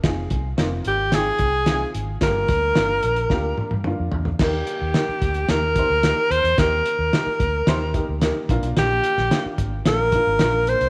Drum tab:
CC |----------------|----------------|x---------------|----------------|
HH |x-x-x-x-x-x-x-x-|x-x-x-xx--------|--x-x-xxx-x-x-xx|x-x-x-x-x-x-x-xx|
SD |o---o---o---o---|o---o---o-------|o---o---o---o---|o---o---o---o---|
T1 |----------------|----------oo----|----------------|----------------|
T2 |----------------|------------o---|----------------|----------------|
FT |----------------|--------------oo|----------------|----------------|
BD |o-o-------o-----|o-o-----o-------|o-----o---o-----|o-----o---o---o-|

CC |----------------|
HH |x-x-x-x-x-x-x-xx|
SD |o--oo---o---o---|
T1 |----------------|
T2 |----------------|
FT |----------------|
BD |------o---o-----|